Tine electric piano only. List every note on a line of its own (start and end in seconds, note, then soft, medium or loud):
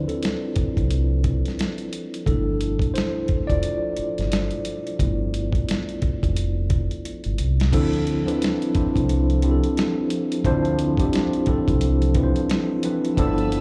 0.00 0.52 F3 soft
0.00 0.09 C4 soft
0.00 2.29 D4 medium
0.00 0.58 E4 medium
0.00 2.29 F4 medium
0.00 2.29 B4 medium
0.00 2.29 C5 medium
0.00 2.29 D5 medium
0.08 0.56 C4 soft
0.08 0.72 A4 medium
0.57 0.87 F3 soft
0.57 0.88 C4 soft
0.57 0.88 E4 soft
2.26 3.26 B2 soft
2.26 3.25 F3 soft
2.26 3.26 A3 soft
2.26 2.92 D4 medium
2.26 2.96 E4 medium
2.26 2.91 A4 medium
2.94 3.46 E4 medium
2.94 3.50 C5 medium
3.47 7.01 F4 medium
3.47 6.99 D5 medium
5.00 5.98 F3 soft
5.00 5.98 A3 soft
5.00 5.98 B3 soft
5.00 5.99 E4 soft
7.72 8.15 F3 medium
7.72 8.15 C4 medium
7.72 8.15 D4 medium
7.72 8.15 E4 medium
7.72 8.16 A4 loud
8.26 8.66 F3 medium
8.26 8.66 C4 medium
8.26 8.67 D4 medium
8.26 8.67 E4 medium
8.26 8.67 B4 medium
8.75 9.32 F3 medium
8.75 9.32 C4 medium
8.75 9.32 D4 medium
8.75 9.32 E4 medium
8.75 9.33 C5 medium
9.43 10.27 F3 medium
9.43 10.27 C4 medium
9.43 10.28 D4 medium
9.43 10.28 E4 medium
9.43 9.51 G4 medium
9.51 10.31 A4 medium
10.45 10.87 F3 loud
10.45 10.87 C4 medium
10.45 10.88 D4 loud
10.45 10.88 E4 medium
10.45 10.88 C5 loud
10.98 11.39 F3 medium
10.98 11.39 C4 medium
10.98 11.39 D4 medium
10.98 11.39 E4 medium
10.98 11.40 G4 medium
11.47 11.55 E3 medium
11.47 12.04 C4 medium
11.47 12.05 D4 medium
11.47 12.05 E4 medium
11.47 12.05 A4 medium
11.53 12.07 F3 medium
12.15 12.72 F3 medium
12.15 12.73 C4 medium
12.15 12.73 D4 medium
12.15 12.73 E4 medium
12.15 12.24 B4 medium
12.23 12.77 C5 medium
12.84 13.12 F3 medium
12.84 13.12 C4 medium
12.84 13.13 D4 medium
12.84 13.13 E4 medium
12.84 13.13 B4 medium
13.17 13.60 F3 loud
13.17 13.60 B3 medium
13.17 13.60 D4 loud
13.17 13.61 E4 medium
13.17 13.61 A4 loud